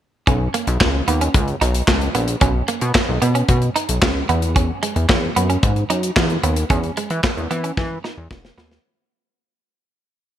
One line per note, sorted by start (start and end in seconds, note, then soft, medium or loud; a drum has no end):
0.27 0.48 B1 medium
0.27 0.38 C#4 medium
0.27 kick medium
0.27 closed hi-hat medium
0.54 0.65 A#3 medium
0.54 closed hi-hat medium
0.67 0.78 B1 loud
0.67 muted clean electric guitar stroke soft
0.67 closed hi-hat soft
0.81 1.02 C#2 medium
0.81 muted clean electric guitar stroke soft
0.81 kick loud
0.81 snare loud
0.81 clap medium
1.08 1.29 D#2 medium
1.08 1.19 B3 medium
1.08 closed hi-hat medium
1.21 1.32 C#4 medium
1.21 closed hi-hat medium
1.34 1.56 C#2 loud
1.34 kick loud
1.34 closed hi-hat medium
1.48 closed hi-hat soft
1.61 1.82 B1 medium
1.61 1.72 D#4 medium
1.61 closed hi-hat medium
1.74 closed hi-hat medium
1.88 2.09 C#2 loud
1.88 kick loud
1.88 snare loud
1.88 clap medium
2.01 closed hi-hat soft
2.15 2.36 A#1 medium
2.15 2.26 B3 medium
2.15 closed hi-hat medium
2.28 closed hi-hat medium
2.41 2.63 B1 loud
2.41 2.53 C#4 medium
2.41 kick loud
2.41 closed hi-hat medium
2.68 2.79 A#3 medium
2.68 closed hi-hat medium
2.81 2.92 B2 medium
2.81 muted clean electric guitar stroke soft
2.81 closed hi-hat soft
2.95 muted clean electric guitar stroke soft
2.95 kick loud
2.95 snare loud
2.95 clap medium
3.09 3.19 B1 medium
3.22 3.43 B2 loud
3.22 3.33 B3 medium
3.22 closed hi-hat medium
3.35 3.46 C#4 medium
3.35 closed hi-hat medium
3.48 3.70 B2 loud
3.48 kick loud
3.48 closed hi-hat medium
3.62 closed hi-hat soft
3.76 3.87 D#4 medium
3.76 closed hi-hat medium
3.89 3.99 B1 medium
3.89 closed hi-hat medium
4.02 4.23 C#2 medium
4.02 kick loud
4.02 snare loud
4.02 clap medium
4.29 4.71 E2 loud
4.29 4.40 B3 medium
4.29 closed hi-hat medium
4.42 closed hi-hat medium
4.56 4.67 C#4 medium
4.56 kick loud
4.56 closed hi-hat medium
4.83 4.94 G#3 medium
4.83 closed hi-hat medium
4.96 5.07 E2 loud
4.96 muted clean electric guitar stroke soft
4.96 closed hi-hat soft
5.09 5.30 E2 loud
5.09 muted clean electric guitar stroke soft
5.09 kick loud
5.09 snare loud
5.09 clap medium
5.36 5.57 F#2 medium
5.36 5.47 B3 medium
5.36 closed hi-hat medium
5.50 5.61 C#4 medium
5.50 closed hi-hat medium
5.63 5.84 G#2 medium
5.63 kick loud
5.63 closed hi-hat medium
5.76 closed hi-hat soft
5.90 6.11 F#2 medium
5.90 6.01 D#4 medium
5.90 closed hi-hat medium
6.03 closed hi-hat medium
6.16 6.38 E2 medium
6.16 kick loud
6.16 snare loud
6.16 clap medium
6.30 closed hi-hat soft
6.43 6.65 D#2 medium
6.43 6.54 B3 medium
6.43 closed hi-hat medium
6.56 closed hi-hat medium
6.70 6.91 E2 loud
6.70 6.81 C#4 medium
6.70 kick loud
6.70 closed hi-hat medium
6.83 closed hi-hat soft
6.97 7.08 G#3 medium
6.97 closed hi-hat medium
7.10 7.21 E3 medium
7.10 muted clean electric guitar stroke soft
7.10 closed hi-hat soft
7.24 muted clean electric guitar stroke soft
7.24 kick loud
7.24 snare loud
7.24 clap medium
7.37 7.48 E2 medium
7.37 closed hi-hat soft
7.51 7.72 E3 loud
7.51 7.62 B3 medium
7.51 closed hi-hat medium
7.64 7.75 C#4 medium
7.64 closed hi-hat medium
7.77 7.98 E3 loud
7.77 kick loud
7.77 snare soft
8.04 8.15 D#4 medium
8.04 snare medium
8.18 8.28 E2 loud
8.31 8.52 E1 loud
8.31 kick loud
8.31 snare medium
8.45 snare medium
8.58 8.79 D#2 medium
8.58 8.69 B3 medium
8.58 snare medium
8.71 snare medium